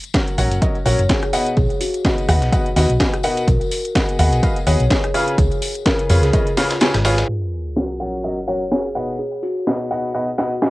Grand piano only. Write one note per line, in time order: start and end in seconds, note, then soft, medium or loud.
0.14 0.34 F#3 medium
0.14 0.34 C#4 medium
0.14 0.34 F#4 medium
0.14 0.34 A#4 medium
0.14 0.34 C#5 medium
0.14 0.34 F#5 medium
0.38 0.58 F#3 medium
0.38 0.58 C#4 medium
0.38 0.58 F#4 medium
0.38 0.58 A#4 medium
0.38 0.58 C#5 medium
0.38 0.58 F#5 medium
0.62 0.76 F#3 medium
0.62 0.76 C#4 medium
0.62 0.76 F#4 medium
0.62 0.76 A#4 medium
0.62 0.76 C#5 medium
0.62 0.76 D#5 medium
0.86 0.99 F#3 medium
0.86 0.99 C#4 medium
0.86 0.99 F#4 medium
0.86 0.99 A#4 medium
0.86 0.99 C#5 medium
0.86 0.99 F#5 loud
1.09 1.23 C#4 medium
1.09 1.23 F#4 medium
1.09 1.23 A#4 medium
1.09 1.23 C#5 medium
1.09 1.23 G#5 medium
1.33 1.53 B2 medium
1.33 1.54 D#4 medium
1.33 1.53 F#4 medium
1.33 1.53 B4 medium
1.33 1.53 D#5 medium
1.33 1.53 F#5 loud
2.05 2.25 B2 medium
2.05 2.25 D#4 medium
2.05 2.25 F#4 medium
2.05 2.25 B4 medium
2.05 2.25 D#5 medium
2.05 2.25 F#5 medium
2.29 2.49 B2 medium
2.29 2.49 D#4 medium
2.29 2.49 F#4 medium
2.29 2.49 B4 medium
2.29 2.49 D#5 medium
2.29 2.49 F#5 medium
2.52 2.66 B2 medium
2.52 2.66 D#4 medium
2.52 2.66 F#4 medium
2.52 2.66 B4 medium
2.52 2.66 D#5 medium
2.52 2.66 F#5 medium
2.76 2.90 B2 medium
2.76 2.90 D#4 medium
2.76 2.90 F#4 medium
2.76 2.90 B4 medium
2.76 2.90 D#5 medium
2.76 2.90 F#5 loud
3.00 3.14 B2 medium
3.00 3.14 D#4 medium
3.00 3.14 F#4 medium
3.00 3.14 B4 medium
3.00 3.14 D#5 medium
3.00 3.14 G#5 medium
3.24 3.44 B2 medium
3.24 3.44 D#4 medium
3.24 3.44 F#4 medium
3.24 3.44 B4 medium
3.24 3.44 D#5 medium
3.24 3.44 F#5 loud
3.95 4.15 B3 medium
3.95 4.15 F#4 medium
3.95 4.15 G#4 medium
3.95 4.15 B4 medium
3.95 4.15 D#5 medium
3.95 4.15 F#5 medium
4.19 4.39 B3 medium
4.19 4.39 F#4 medium
4.19 4.39 G#4 medium
4.19 4.39 B4 medium
4.19 4.39 D#5 medium
4.19 4.39 F#5 medium
4.43 4.57 B3 medium
4.43 4.57 F#4 medium
4.43 4.57 G#4 medium
4.43 4.57 B4 medium
4.43 4.57 D#5 medium
4.43 4.57 F5 medium
4.67 4.80 B3 medium
4.67 4.80 F#4 medium
4.67 4.80 G#4 medium
4.67 4.80 B4 medium
4.67 4.80 D#5 medium
4.67 4.80 F#5 loud
4.90 5.04 F#4 medium
4.90 5.04 G#4 medium
4.90 5.04 B4 medium
4.90 5.04 D#5 medium
4.90 5.04 G#5 medium
5.14 5.34 C#3 loud
5.14 5.34 F4 medium
5.14 5.34 G#4 medium
5.14 5.34 B4 medium
5.14 5.34 C#5 medium
5.14 5.34 F5 loud
5.86 6.06 C#3 medium
5.86 6.06 F4 medium
5.86 6.06 G#4 medium
5.86 6.06 B4 medium
5.86 6.06 C#5 medium
5.86 6.06 F5 medium
6.10 6.30 C#3 medium
6.10 6.30 F4 medium
6.10 6.30 G#4 medium
6.10 6.30 B4 medium
6.10 6.30 C#5 medium
6.10 6.30 F5 medium
6.33 6.47 C#3 medium
6.33 6.47 F4 medium
6.33 6.47 G#4 medium
6.33 6.47 B4 medium
6.33 6.47 C#5 medium
6.33 6.47 D#5 medium
6.57 6.71 C#3 medium
6.57 6.71 F4 medium
6.57 6.71 G#4 medium
6.57 6.71 B4 medium
6.57 6.71 C#5 medium
6.57 6.71 F5 loud
6.81 6.95 C#3 medium
6.81 6.95 F4 medium
6.81 6.95 G#4 medium
6.81 6.95 B4 medium
6.81 6.95 C#5 medium
6.81 6.95 G#5 medium
7.05 7.25 F4 medium
7.05 7.25 G#4 medium
7.05 7.25 B4 medium
7.05 7.25 C#5 medium
7.05 7.25 F5 loud
7.76 7.96 F#3 medium
7.76 7.96 C#4 medium
7.76 7.96 F#4 medium
7.76 7.96 A#4 medium
7.76 7.96 C#5 medium
7.76 7.96 F#5 medium
8.00 8.20 F#3 medium
8.00 8.20 C#4 medium
8.00 8.20 F#4 medium
8.00 8.20 A#4 medium
8.00 8.20 C#5 medium
8.00 8.20 F#5 medium
8.24 8.38 F#3 medium
8.24 8.38 C#4 medium
8.24 8.38 F#4 medium
8.24 8.38 A#4 medium
8.24 8.38 C#5 medium
8.24 8.38 D#5 medium
8.48 8.61 F#3 medium
8.48 8.61 C#4 medium
8.48 8.61 F#4 medium
8.48 8.61 A#4 medium
8.48 8.61 C#5 medium
8.48 8.61 F#5 medium
8.72 8.85 C#4 medium
8.72 8.85 F#4 medium
8.72 8.85 A#4 medium
8.72 8.85 C#5 medium
8.72 8.85 G#5 medium
8.95 9.15 B2 medium
8.95 9.15 D#4 medium
8.95 9.15 F#4 medium
8.95 9.15 B4 medium
8.95 9.15 D#5 medium
8.95 9.15 F#5 loud
9.67 9.87 B2 medium
9.67 9.87 D#4 medium
9.67 9.87 F#4 medium
9.67 9.87 B4 medium
9.67 9.87 D#5 medium
9.67 9.87 F#5 medium
9.91 10.11 B2 medium
9.91 10.11 D#4 medium
9.91 10.11 F#4 medium
9.91 10.11 B4 medium
9.91 10.11 D#5 medium
9.91 10.11 F#5 medium
10.14 10.28 B2 medium
10.14 10.28 D#4 medium
10.14 10.28 F#4 medium
10.14 10.28 B4 medium
10.14 10.28 D#5 medium
10.14 10.28 F#5 medium
10.38 10.52 B2 medium
10.38 10.52 D#4 medium
10.38 10.52 F#4 medium
10.38 10.52 B4 medium
10.38 10.52 D#5 medium
10.38 10.52 F#5 medium
10.62 10.70 B2 medium
10.62 10.70 D#4 medium
10.62 10.70 F#4 medium
10.62 10.70 B4 medium
10.62 10.70 D#5 medium
10.62 10.70 G#5 medium